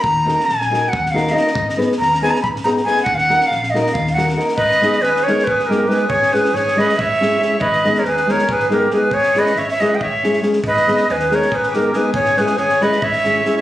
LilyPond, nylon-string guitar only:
\new Staff \with { instrumentName = "Nylon-string guitar" } { \time 7/8 \key ees \minor \tempo 4 = 139 r8 <bes ees' ges' bes'>8 r8 <bes ees' ges' bes'>8 r8 <bes ees' ges' bes'>8 <bes ees' ges' bes'>8 | r8 <ces' ees' aes' ces''>8 r8 <ces' ees' aes' ces''>8 r8 <ces' ees' aes' ces''>8 <ces' ees' aes' ces''>8 | r8 <bes ees' ges' bes'>8 r8 <bes ees' ges' bes'>8 r8 <bes ees' ges' bes'>8 <bes ees' ges' bes'>8 | \key gis \minor r8 <gis b dis' gis'>8 r8 <gis b dis' gis'>8 r8 <gis b dis' gis'>8 <gis b dis' gis'>8 |
r8 <gis cis' e' gis'>8 r8 <gis cis' e' gis'>8 r8 <gis cis' e' gis'>8 <gis cis' e' gis'>8 | r8 <gis b dis' gis'>8 r8 <gis b dis' gis'>8 r8 <gis b dis' gis'>8 <gis b dis' gis'>8 | r8 <gis cis' e' gis'>8 r8 <gis cis' e' gis'>8 r8 <gis cis' e' gis'>8 <gis cis' e' gis'>8 | r8 <gis b dis' gis'>8 r8 <gis b dis' gis'>8 r8 <gis b dis' gis'>8 <gis b dis' gis'>8 |
r8 <gis cis' e' gis'>8 r8 <gis cis' e' gis'>8 r8 <gis cis' e' gis'>8 <gis cis' e' gis'>8 | }